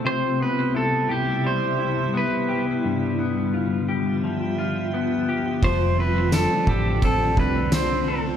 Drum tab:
RD |--------|--------|x-x-x-x-|
TB |--------|--------|--x---x-|
SD |--------|--------|--o---o-|
BD |--------|--------|o--ooo--|